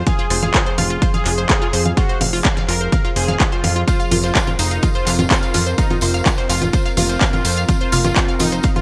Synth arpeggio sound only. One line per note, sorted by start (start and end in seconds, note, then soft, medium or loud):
0.07 0.13 F5 loud
0.19 0.25 F4 loud
0.30 0.40 C5 loud
0.43 0.49 F5 loud
0.54 0.61 F4 loud
0.66 0.76 C5 loud
0.78 0.85 F5 loud
0.90 0.97 F4 loud
1.02 1.12 C5 loud
1.14 1.20 F5 loud
1.26 1.32 F4 loud
1.38 1.47 C5 loud
1.49 1.56 F5 loud
1.62 1.68 F4 loud
1.73 1.83 C5 loud
1.85 1.92 F5 loud
1.97 2.04 F4 loud
2.09 2.19 C5 loud
2.21 2.27 F5 loud
2.33 2.39 F4 loud
2.45 2.55 C5 loud
2.57 2.63 F5 loud
2.68 2.75 F4 loud
2.81 2.90 C5 loud
2.92 2.99 F5 loud
3.05 3.11 F4 loud
3.16 3.26 C5 loud
3.28 3.35 F5 loud
3.40 3.47 F4 medium
3.52 3.62 C5 loud
3.64 3.70 F5 loud
3.76 3.82 F4 loud
3.88 3.97 C5 loud
4.00 4.06 F5 loud
4.11 4.18 F4 loud
4.24 4.33 C5 loud
4.35 4.42 F5 loud
4.47 4.54 F4 loud
4.59 4.69 C5 loud
4.71 4.77 F5 loud
4.83 4.89 F4 loud
4.95 5.04 C5 loud
5.07 5.13 F5 loud
5.19 5.25 F4 loud
5.31 5.40 C5 loud
5.43 5.49 F5 loud
5.54 5.61 F4 loud
5.67 5.76 C5 loud
5.78 5.85 F5 loud
5.90 5.97 F4 loud
6.02 6.12 C5 loud
6.14 6.20 F5 loud
6.26 6.32 F4 loud
6.38 6.47 C5 loud
6.49 6.56 F5 loud
6.62 6.68 F4 loud
6.73 6.83 C5 loud
6.86 6.92 F5 loud
6.97 7.04 F4 loud
7.09 7.19 C5 loud
7.21 7.28 F5 loud
7.33 7.39 F4 loud
7.45 7.55 C5 loud
7.57 7.63 F5 loud
7.69 7.75 F4 loud
7.81 7.90 C5 loud
7.93 7.99 F5 loud
8.05 8.11 F4 loud
8.16 8.26 C5 loud
8.28 8.35 F5 loud
8.40 8.47 F4 loud
8.52 8.62 C5 loud
8.64 8.70 F5 loud
8.76 8.82 F4 loud